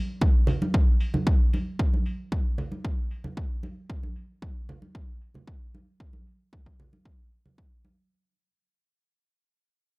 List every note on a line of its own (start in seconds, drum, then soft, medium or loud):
0.21 kick loud
0.21 high conga medium
0.47 open hi-hat medium
0.47 low conga medium
0.62 high conga medium
0.74 kick loud
1.00 open hi-hat loud
1.14 high conga medium
1.14 low conga medium
1.27 kick loud
1.53 open hi-hat medium
1.53 high conga medium
1.79 kick loud
1.94 high conga medium
2.06 open hi-hat loud
2.32 kick loud
2.32 high conga medium
2.58 open hi-hat medium
2.58 low conga medium
2.72 high conga medium
2.85 kick loud
3.11 open hi-hat medium
3.24 high conga medium
3.24 low conga medium
3.37 kick loud
3.63 open hi-hat medium
3.63 high conga medium
3.90 kick loud
4.03 high conga medium
4.16 open hi-hat medium
4.42 kick loud
4.42 high conga medium
4.69 open hi-hat medium
4.69 low conga medium
4.82 high conga medium
4.95 kick loud
5.21 open hi-hat medium
5.34 high conga medium
5.34 low conga medium
5.47 kick loud
5.74 open hi-hat medium
5.74 high conga medium
6.00 kick loud
6.13 high conga medium
6.27 open hi-hat medium
6.53 kick loud
6.53 high conga medium
6.66 kick medium
6.80 low conga medium
6.93 high conga medium
7.05 kick loud
7.46 high conga medium
7.46 low conga medium
7.58 kick loud
7.85 high conga medium